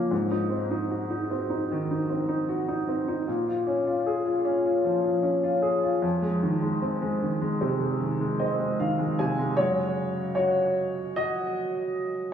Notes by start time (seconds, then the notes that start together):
Already playing: C#3 F3 A#3 C#4
0.11 G#2
0.31 D#4
0.50 C4
0.71 D#4
0.91 F#4
1.10 D#4
1.30 C4
1.50 D#4
1.71 D#3
1.91 D#4
2.09 C4
2.28 D#4
2.49 F#4
2.68 D#4
2.88 C4
3.08 D#4
3.28 A#2
3.47 F4
3.67 C#4
3.87 F4
4.06 G#4
4.26 F4
4.45 C#4
4.65 F4
4.84 F3
5.03 F4
5.23 C#4
5.43 F4
5.62 G#4
5.83 F4
6.02 F2
6.22 G#3
6.43 D#3
6.62 G#3
6.82 C4
7.02 G#3
7.22 D#3
7.41 G#3
7.61 C3
7.79 G#3
8.00 D#3
8.20 G#3
8.39 C4 D#5
8.59 G#3
8.80 D#3 F5
8.99 G#3
9.19 C3 G#5
9.39 G#3
9.57 F#2 C#3 G#3 F#4 C#5
10.35 F#4 C#5
11.16 F#4 D#5